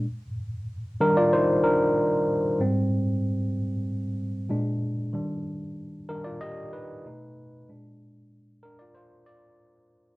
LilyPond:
<<
  \new Staff \with { instrumentName = "Tine electric piano" } { \time 4/4 \key ees \major \tempo 4 = 94 r4. <d' bes'>16 <f' d''>16 <ees' c''>8 <d' bes'>4 r8 | r1 | r4. bes'16 <f' d''>16 <g' ees''>8 <ees' ces''>4 r8 | r4. <d' bes'>16 <f' d''>16 <f' c''>8 <f' d''>4 r8 | }
  \new Staff \with { instrumentName = "Tine electric piano" } { \clef bass \time 4/4 \key ees \major r4. <ees g>4. r4 | <aes, g c'>4. r4. <bes, aes d'>8 r8 | <ees g d'>4. <ees g d'>8 r4 <b, a dis'>4 | <bes, aes d'>1 | }
>>